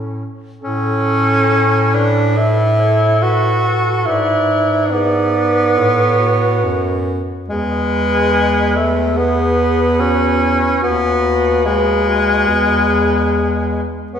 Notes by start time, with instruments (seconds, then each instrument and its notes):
Already playing: bass clarinet A2, tenor saxophone C#4, clarinet A4, alto saxophone A4
0.61 bass clarinet A2, tenor saxophone C#4, alto saxophone A4, clarinet A4
1.52 clarinet C#5
1.94 tenor saxophone D4, clarinet B4
2.36 tenor saxophone E4, clarinet A4, alto saxophone A4
2.79 clarinet C#5
3.22 tenor saxophone F#4, clarinet B4
3.68 clarinet A4
4.06 bass clarinet G#2, tenor saxophone E4, clarinet B4, alto saxophone D5
4.92 tenor saxophone B3, clarinet G#4, alto saxophone D5
5.35 clarinet B4
5.76 bass clarinet A2, clarinet A4, alto saxophone C#5
6.19 clarinet F#4
6.64 bass clarinet F#2
7.48 bass clarinet E2, tenor saxophone G#3, clarinet G#4, alto saxophone B4
8.32 clarinet B4
8.75 tenor saxophone A3, clarinet A4
9.16 tenor saxophone B3, clarinet G#4, alto saxophone B4
9.99 tenor saxophone C#4, clarinet F#4
10.40 clarinet E4
10.81 bass clarinet D#2, tenor saxophone B3, clarinet F#4, alto saxophone B4
11.65 tenor saxophone G#3, clarinet G#4
12.07 clarinet F#4
12.47 bass clarinet E2, clarinet G#4, alto saxophone B4
14.13 bass clarinet F2, tenor saxophone B3, clarinet G#4, alto saxophone C#5